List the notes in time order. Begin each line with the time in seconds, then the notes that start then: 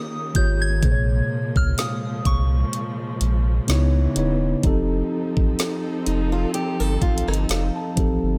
Already playing: C#3 D#3 A#3 G4 D#6
0.34 G#1 D#3 A#3 F4 G4 C#5 G6, kick, closed hi-hat
0.62 G#6
0.81 A#1 A#2 C3 F3 G#3 A#3 G#4, kick, closed hi-hat
0.85 C5
0.92 C#5
1.56 C#2 F6, kick
1.78 F5 D#6, snare, closed hi-hat
2.25 C2 C#6, kick, closed hi-hat
2.73 closed hi-hat
3.21 A#1, closed hi-hat
3.67 C#2 C#3 E3 B3 D#4 E4, snare, closed hi-hat
3.71 C#5
4.15 D#1 C#3 B3 D#4 E4, closed hi-hat
4.19 C#5
4.62 F1 F3 C4 D#4 G4 A4, kick, closed hi-hat
4.66 A4
5.37 A1, kick
5.59 snare, closed hi-hat
6.06 F1 D#4, closed hi-hat
6.32 F4
6.54 G4, closed hi-hat
6.80 G1 A4
7.02 A1 F4, kick, closed hi-hat
7.18 closed hi-hat
7.27 G1 D#4, cross-stick
7.34 closed hi-hat
7.49 F1 F5, snare, closed hi-hat
7.76 A5
7.95 A1 F3 C4 D#4 G4, kick, closed hi-hat
8.00 A4
8.23 G1